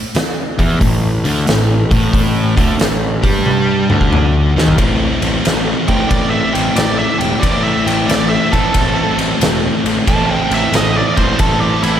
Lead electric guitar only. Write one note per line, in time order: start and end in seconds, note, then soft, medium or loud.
5.88 6.10 G5 medium
6.09 6.30 D5 medium
6.30 6.53 E5 medium
6.53 6.75 G5 medium
6.76 6.98 D5 medium
6.98 7.20 E5 medium
7.18 7.41 G5 medium
7.40 7.62 D5 medium
7.64 7.86 E5 medium
7.87 8.08 G5 medium
8.06 8.29 D5 medium
8.29 8.51 E5 medium
8.52 9.17 A4 medium
10.08 10.29 A5 medium
10.30 10.51 G5 medium
10.54 10.74 E5 medium
10.76 10.96 D#5 medium
10.97 11.18 D5 medium
11.17 11.38 C5 medium
11.40 11.61 A4 medium
11.60 11.82 G4 medium
11.83 12.00 E4 medium